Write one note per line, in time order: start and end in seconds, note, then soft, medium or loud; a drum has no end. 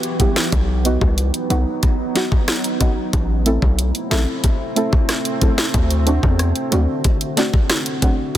0.00 0.50 E3 medium
0.00 0.50 B3 medium
0.00 0.50 F#4 medium
0.00 0.50 G4 medium
0.00 closed hi-hat medium
0.19 0.32 G3 medium
0.19 0.33 B3 medium
0.19 0.33 E4 medium
0.19 0.33 G4 loud
0.19 kick loud
0.19 closed hi-hat medium
0.19 low bongo medium
0.36 snare loud
0.52 0.97 B1 loud
0.52 3.11 F#3 medium
0.52 3.11 B3 medium
0.52 3.11 D#4 medium
0.52 kick loud
0.52 closed hi-hat medium
0.52 high bongo medium
0.84 0.98 F#3 medium
0.84 0.98 B3 medium
0.84 0.98 D#4 medium
0.84 0.99 F#4 medium
0.84 closed hi-hat medium
1.01 1.31 C2 medium
1.01 kick loud
1.01 high bongo medium
1.18 closed hi-hat medium
1.34 closed hi-hat soft
1.49 1.65 B1 loud
1.49 1.63 F#3 medium
1.49 1.63 B3 medium
1.49 1.64 D#4 medium
1.49 1.64 F#4 loud
1.49 closed hi-hat medium
1.49 low bongo medium
1.83 kick medium
1.83 closed hi-hat medium
1.83 high bongo medium
2.15 2.28 F#3 medium
2.15 2.28 B3 medium
2.15 2.29 D#4 medium
2.15 2.29 F#4 loud
2.15 snare medium
2.15 closed hi-hat medium
2.32 kick loud
2.32 high bongo medium
2.48 cross-stick medium
2.48 snare loud
2.48 closed hi-hat medium
2.64 closed hi-hat medium
2.80 2.93 F#3 medium
2.80 2.94 B3 medium
2.80 2.94 D#4 medium
2.80 2.94 F#4 loud
2.80 kick loud
2.80 closed hi-hat medium
2.80 low bongo medium
3.13 3.58 A1 loud
3.13 8.31 A3 medium
3.13 8.31 C4 medium
3.13 5.72 E4 medium
3.13 kick loud
3.13 closed hi-hat medium
3.13 high bongo medium
3.45 3.59 A3 medium
3.45 3.59 C4 medium
3.45 3.59 E4 medium
3.45 3.59 A4 loud
3.45 closed hi-hat medium
3.62 3.92 B1 medium
3.62 kick medium
3.62 high bongo medium
3.79 closed hi-hat medium
3.95 closed hi-hat soft
4.10 4.26 A1 loud
4.10 4.24 A3 medium
4.10 4.24 C4 medium
4.10 4.24 E4 medium
4.10 4.25 A4 medium
4.10 snare loud
4.10 closed hi-hat medium
4.10 low bongo medium
4.44 kick medium
4.44 closed hi-hat medium
4.44 high bongo medium
4.75 4.89 A3 medium
4.75 4.89 C4 medium
4.75 4.89 E4 medium
4.75 4.90 A4 loud
4.75 closed hi-hat medium
4.93 kick loud
4.93 high bongo medium
5.09 cross-stick medium
5.09 snare medium
5.09 closed hi-hat medium
5.25 closed hi-hat medium
5.41 5.54 A3 medium
5.41 5.54 C4 medium
5.41 5.55 E4 medium
5.41 5.55 A4 medium
5.41 kick loud
5.41 closed hi-hat medium
5.41 low bongo medium
5.58 snare loud
5.74 6.19 D2 loud
5.74 8.32 D3 medium
5.74 8.38 F#4 medium
5.74 kick loud
5.74 closed hi-hat medium
5.74 high bongo medium
5.91 closed hi-hat medium
6.06 6.19 A3 medium
6.06 6.20 C4 medium
6.06 6.20 D4 medium
6.06 6.20 F#4 loud
6.06 closed hi-hat medium
6.23 6.53 E2 medium
6.23 kick medium
6.23 high bongo medium
6.39 cross-stick medium
6.39 closed hi-hat medium
6.56 closed hi-hat soft
6.71 6.87 D2 medium
6.71 6.85 A3 medium
6.71 6.85 C4 medium
6.71 6.85 D4 medium
6.71 6.86 F#4 loud
6.71 closed hi-hat medium
6.71 low bongo medium
7.04 kick medium
7.04 closed hi-hat medium
7.04 high bongo medium
7.21 closed hi-hat medium
7.36 7.50 A3 medium
7.36 7.50 C4 medium
7.36 7.50 D4 medium
7.36 7.51 F#4 loud
7.36 snare medium
7.36 closed hi-hat medium
7.53 kick loud
7.53 high bongo medium
7.70 cross-stick loud
7.70 snare loud
7.70 closed hi-hat medium
7.86 closed hi-hat medium
8.02 8.15 A3 medium
8.02 8.15 C4 medium
8.02 8.16 D4 medium
8.02 8.16 F#4 medium
8.02 kick loud
8.02 closed hi-hat medium
8.02 low bongo medium